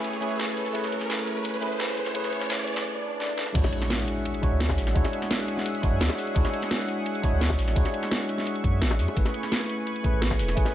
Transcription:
Already playing: A3 C#4 E4 G#4 B4 C#5, riser
0.04 closed hi-hat
0.13 closed hi-hat
0.20 A3 C#4 E4 G#4 B4, closed hi-hat
0.40 snare, closed hi-hat
0.48 closed hi-hat
0.57 closed hi-hat
0.66 closed hi-hat
0.73 A3 C#4 E4 G#4 B4, closed hi-hat
0.84 snare
0.92 closed hi-hat
1.01 snare
1.10 snare, closed hi-hat
1.27 closed hi-hat
1.45 closed hi-hat
1.54 closed hi-hat
1.61 A3 C#4 E4 G#4 B4, closed hi-hat
1.80 snare, closed hi-hat
1.89 closed hi-hat
1.97 closed hi-hat
2.06 snare, closed hi-hat
2.13 A3 C#4 E4 G#4 B4, closed hi-hat
2.24 snare
2.33 closed hi-hat
2.41 snare, closed hi-hat
2.50 snare, closed hi-hat
2.67 closed hi-hat
2.76 snare
2.85 swell
3.20 snare
3.29 high tom
3.38 snare
3.46 mid tom
3.54 D2 G#3 D4 E4 F#4 G#4 C#5 E5 F#5 C#6, kick, closed hi-hat, crash, impact
3.64 snare, high bongo
3.73 closed hi-hat
3.82 snare
3.90 snare, closed hi-hat
4.08 closed hi-hat
4.25 closed hi-hat
4.34 closed hi-hat
4.41 G#3 D4 E4 F#4 C#5, kick, closed hi-hat
4.52 D2
4.60 snare, closed hi-hat
4.69 kick, closed hi-hat, high bongo
4.78 A1, open hi-hat
4.87 snare, closed hi-hat
4.94 D2 G#3 D4 E4 F#4 C#5, kick, closed hi-hat
5.05 snare, high bongo
5.13 closed hi-hat
5.22 snare
5.31 snare, closed hi-hat
5.48 closed hi-hat
5.57 snare
5.66 closed hi-hat
5.75 closed hi-hat
5.82 A1 G#3 D4 E4 F#4 C#5, kick, closed hi-hat
5.92 F#2
6.01 D2, snare, closed hi-hat
6.09 closed hi-hat, high bongo
6.18 open hi-hat
6.27 closed hi-hat
6.34 D2 G#3 D4 E4 F#4 C#5, kick, closed hi-hat
6.45 snare, high bongo
6.53 closed hi-hat
6.62 snare
6.71 snare, closed hi-hat
6.88 closed hi-hat
7.06 closed hi-hat
7.15 closed hi-hat
7.22 G#3 D4 E4 F#4 C#5, kick, closed hi-hat
7.32 D2
7.41 snare, closed hi-hat
7.50 kick, closed hi-hat, high bongo
7.59 A1, open hi-hat
7.68 snare, closed hi-hat
7.75 D2 G#3 D4 E4 F#4 C#5, kick, closed hi-hat
7.85 snare, high bongo
7.94 closed hi-hat
8.03 snare
8.11 snare, closed hi-hat
8.29 closed hi-hat
8.38 snare
8.47 closed hi-hat
8.55 closed hi-hat
8.64 F#2, kick, closed hi-hat
8.81 A1, snare, closed hi-hat
8.90 closed hi-hat, high bongo
8.99 F#2, open hi-hat
9.08 closed hi-hat, high bongo
9.15 A1 A3 C#4 E4 G#4 B4 G#5, kick, closed hi-hat
9.25 snare, high bongo
9.34 closed hi-hat
9.43 snare
9.52 snare, closed hi-hat
9.69 closed hi-hat
9.87 closed hi-hat
9.96 closed hi-hat
10.03 A3 C#4 E4 G#4 B4, kick, closed hi-hat
10.13 A1
10.22 snare, closed hi-hat
10.31 kick, closed hi-hat, high bongo
10.39 E1, open hi-hat
10.48 snare, closed hi-hat
10.55 A1 A3 C#4 E4 G#4 B4, kick, closed hi-hat
10.65 snare, high bongo

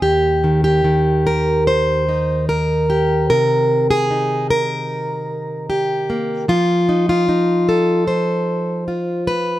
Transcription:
0.02 D#2 G4
0.44 D#3
0.64 G4
0.84 D#3
1.27 A#4
1.67 C5
2.08 D#4
2.49 A#4
2.90 G4
3.30 C3 A#4
3.91 G#4
4.11 D#4
4.50 A#4
5.70 G4
6.10 A#3
6.48 F3 F4
6.89 D#4
7.09 F4
7.29 D#4
7.69 A4
8.07 C5
8.88 F4
9.27 B4

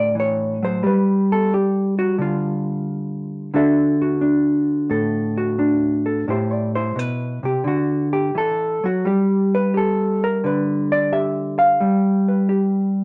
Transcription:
Already playing: A2 D3 D4 F#4 A4 D5
0.15 E3
0.20 C#5
0.62 F#3 C5
0.83 G3 G4 B4
1.32 A4
1.54 G4
1.99 F#4
2.18 D3 F4
3.54 D3 D4 F#4 A4 E5
4.02 F#4
4.21 D4
4.90 A2 A4
5.38 F#4
5.59 D4
6.06 A4
6.28 A2 E4 G4 C5
6.53 D5
6.75 E4 C5
6.96 B2 B4
7.43 C3 G4
7.64 D3 F#4
8.13 G4
8.35 E3 A4
8.84 F#3 F#4
9.05 G3 G4
9.55 B4
9.74 G4 A4
10.24 A#4
10.44 D3 B4
10.92 D5
11.13 G4 E5
11.59 F5
11.80 G3
12.29 B4
12.49 G4

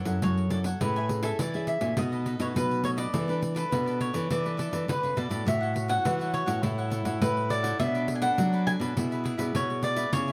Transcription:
Already playing: F#3
0.05 F#2 C#4 E4 A4 C#5 F#5, pandeiro
0.22 F#2 F#3 C#5, pandeiro
0.37 muted cavaquinho stroke, pandeiro
0.50 C#4 D4 E4 A4 C#5 D5 F#5, pandeiro
0.64 A4 C#5 F#5, pandeiro
0.80 A2 A3 C#4 E4 G#4 A4 B4 C#5 E5 G#5, pandeiro
0.96 C#5 E5 G#5, pandeiro
1.09 C#4 E4 G#4, muted cavaquinho stroke, pandeiro
1.23 A4 C#5 E5 G#5, pandeiro
1.39 E3 A4 C#5 D5 E5 G#5, pandeiro
1.54 C#4 E4 G#4 C#5 E5 G#5, pandeiro
1.67 E5, pandeiro
1.81 A#2 A3 D#4 F#4 C#5 E5 G#5, pandeiro
1.97 B2 D#4 A4 B4 D#5, pandeiro
2.12 A4 B4 D#5, pandeiro
2.26 D#4 A4 B4 D#5, pandeiro
2.39 B2 A3 D#4 F#4 A4 B4 C#5 D#5, pandeiro
2.55 B2 F#3 B4, pandeiro
2.71 muted cavaquinho stroke, pandeiro
2.83 A3 D#4 F#4 A4 B4 C#5 D#5, pandeiro
2.97 A4 B4 D5 D#5, pandeiro
3.13 E3 D4 E4 A4 B4 D5, pandeiro
3.28 D4 A4 B4 D5, pandeiro
3.41 muted cavaquinho stroke, pandeiro
3.55 A4 B4 D5, pandeiro
3.71 B2 D4 E4 A4 B4 D5, pandeiro
3.86 A4 B4 D5, pandeiro
4.01 C#5, pandeiro
4.13 E3 D4 A4 B4 D5, pandeiro
4.30 E3 E4 A4 B4 D5, pandeiro
4.44 D4 A4 B4 D5, pandeiro
4.57 E4 A4 B4 D5, pandeiro
4.71 E3 A4 B4 D5, pandeiro
4.88 B2 D3 D4 A4 B4, pandeiro
5.03 C#3, muted cavaquinho stroke, pandeiro
5.16 B2 E4 A4 B4 D5, pandeiro
5.30 A2 E4 F#4 A4 B4 C#5 D5, pandeiro
5.46 A2 A3 F#4 A4 C#5 E5 F#5, pandeiro
5.61 A4 C#5 F#5, pandeiro
5.74 E4 F#4 C#5, muted cavaquinho stroke, pandeiro
5.88 A4 C#5 F#5, pandeiro
6.05 E3 F#4 A4 C#5 F#5, pandeiro
6.19 E4 F#4 A4 C#5 F#5, pandeiro
6.34 C#5, pandeiro
6.46 A2 E4 F#4 A4 C#5 F#5, pandeiro
6.62 A2 A3 E4 A4 C#5 F#5, pandeiro
6.78 A4 C#5 F#5, pandeiro
6.90 E4 A4 C#5 F#5, pandeiro
7.05 A2 E4 F#4 A4 C#5 F#5, pandeiro
7.21 A2 A3 B4, pandeiro
7.36 muted cavaquinho stroke, pandeiro
7.49 E4 F#4 A4 C#5 D5 F#5, pandeiro
7.62 A4 C#5 F#5, pandeiro
7.79 B2 B3 D4 A4 B4 C#5 D5 E5, pandeiro
7.94 A4 B4 D5, pandeiro
8.08 muted cavaquinho stroke, pandeiro
8.15 G#5
8.22 D4 A4 B4 C#5 D5 F#5, pandeiro
8.38 F#3 D4 A4 B4 D5, pandeiro
8.53 A4 B4 D5, pandeiro
8.67 D4 A4 C#5 G#5, pandeiro
8.79 B2 A4 B4 D5, pandeiro
8.96 B2 B3 D4 E4 G#4 B4 D5 E5, pandeiro
9.11 G#4 B4 E5, pandeiro
9.24 D4 G#4 B4 E5, pandeiro
9.38 B2 E4 G#4 B4 D5 E5, pandeiro
9.55 B2 B3 C#5, pandeiro
9.69 E4 G#4 D5, muted cavaquinho stroke, pandeiro
9.82 D4 G#4 B4 D5 E5, pandeiro
9.96 G#4 B4 E5, pandeiro
10.12 C#3 B3 E4 G#4 A4 C#5 E5 G#5, pandeiro
10.28 G#5, pandeiro

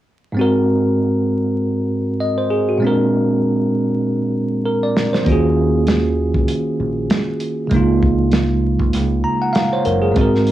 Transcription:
0.32 G#2 G#3
0.37 C4 F#4
0.41 A#4
2.20 D#5
2.38 C5
2.50 G#4
2.68 F#4
2.77 A#2 G#3
2.82 C4 D4
2.86 A#4
4.66 A#4
4.83 D5
4.97 snare
5.13 C5, snare
5.23 D#3 A#3 C#4, kick, closed hi-hat
5.27 D#2 F4 F#4
5.32 G#4
5.87 snare, closed hi-hat
6.35 C#2, kick
6.48 closed hi-hat
6.80 A#1
7.10 snare, closed hi-hat
7.40 closed hi-hat
7.67 C#3 G#3, closed hi-hat
7.71 C#2 A#3 D#4, kick
7.76 F4
8.03 kick
8.32 snare, closed hi-hat
8.80 C#2, kick
8.93 C#2, snare, closed hi-hat
9.24 A#5
9.42 F#5
9.53 F5, snare, closed hi-hat
9.73 C5 C#5
9.85 F#1 A#4, closed hi-hat
10.02 G#4
10.12 G#2 G#3, closed hi-hat
10.16 G#1 C4 F#4, kick
10.21 A#4
10.35 snare
10.47 closed hi-hat

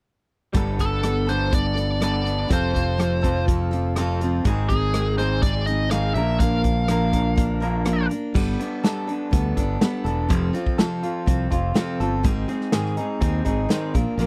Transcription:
0.53 G1 G3 B3 D4 A4, kick, closed hi-hat
0.78 B3 D4 A4, kick, closed hi-hat
1.03 G3 B3 D4 A4, cross-stick, closed hi-hat
1.26 B3 D4 A4 C5, closed hi-hat
1.31 G3
1.50 G3 B3 D4 A4, kick, closed hi-hat
1.55 D5
1.75 B3 D4 A4, closed hi-hat
2.00 G3 B3 D4 A4 D5, cross-stick, closed hi-hat
2.23 B3 D4 A4, closed hi-hat
2.48 F1 F2 C3 F3 C4 F4 A4, kick, closed hi-hat
2.53 C5
2.73 F3 C4 F4 A4, kick, closed hi-hat
2.97 F2 C3 F3 C4 F4 A4, cross-stick, closed hi-hat
3.21 F3 C4 F4 A4, kick, closed hi-hat
3.47 F3 C4 F4 A4, kick, closed hi-hat
3.71 F3 C4 F4 A4, closed hi-hat
3.96 F2 C3 F3 C4 F4 A4, cross-stick, closed hi-hat
4.21 F3 C4 F4 A4, closed hi-hat
4.45 G#1 G#2 D#3 G#3 C4 D#4 G#4, kick, closed hi-hat
4.69 G#3 C4 D#4 G#4, kick, closed hi-hat
4.93 G#2 D#3 G#3 C4 D#4 G#4, cross-stick, closed hi-hat
5.18 G#2 D#3 G#3 C4 D#4 G#4 C5, closed hi-hat
5.43 G#3 C4 D#4 G#4 D5, kick, closed hi-hat
5.66 C4 D#4 G#4 D#5, closed hi-hat
5.70 G#3
5.91 G#2 D#3 G#3 C4 D#4 G#4 F5, cross-stick, closed hi-hat
6.14 A#1 A#2 D3 F3 D4 A#4 E5, closed hi-hat
6.19 A#3
6.39 A#2 F3 A#3 D4 A#4 F5, kick, closed hi-hat
6.64 A#3 D4 A#4, kick, closed hi-hat
6.88 A#2 D3 F3 A#3 D4 A#4, cross-stick, closed hi-hat
7.12 A#3 D4 A#4, kick, closed hi-hat
7.36 F3 A#3 D4 A#4, kick, closed hi-hat
7.60 D3 F3 A#3 D4 A#4, closed hi-hat
7.64 A#2
7.85 A#2 F3 A#3 D4 A#4, cross-stick, closed hi-hat
8.09 A#3 D4 A#4, closed hi-hat
8.34 G1 G3 B3 D4 A4, kick, crash
8.59 B3 D4 A4, closed hi-hat
8.83 G3 B3 D4 A4, snare, closed hi-hat
9.07 B3 D4 A4, closed hi-hat
9.31 D2 G3 B3 D4 A4, kick, closed hi-hat
9.57 G1 B3 D4 A4, kick, closed hi-hat
9.81 G3 B3 D4 A4, snare, closed hi-hat
10.04 E1 B3 D4 A4, closed hi-hat
10.28 F1 F2 C3 F3 C4 F4 A4, kick, closed hi-hat
10.53 F3 C4 F4 A4, closed hi-hat
10.66 kick
10.78 F2 C3 F3 C4 F4 A4, snare, closed hi-hat
11.03 F3 C4 F4 A4, closed hi-hat
11.26 C2 F3 C4 F4 A4, kick, closed hi-hat
11.50 F1 F3 C4 F4 A4, kick, closed hi-hat
11.74 F2 C3 F3 C4 F4 A4, snare, closed hi-hat
12.00 G1 F3 C4 F4 A4, closed hi-hat
12.23 G#1 G#2 D#3 G#3 C4 D#4 G#4, kick, closed hi-hat
12.48 G#3 C4 D#4 G#4, closed hi-hat
12.61 snare
12.72 G#2 D#3 G#3 C4 D#4 G#4, snare, closed hi-hat
12.85 snare
12.97 G#3 C4 D#4 G#4, closed hi-hat
13.21 D#2 G#3 C4 D#4 G#4, kick, closed hi-hat
13.45 G#1 G#3 C4 D#4 G#4, kick, closed hi-hat
13.69 G#2 D#3 G#3 C4 D#4 G#4, snare, closed hi-hat
13.94 A#1 A#2 F3 A#3 D4 A#4, kick, closed hi-hat
14.18 A#1 A#2 D3 F3 A#3 D4 A#4, closed hi-hat

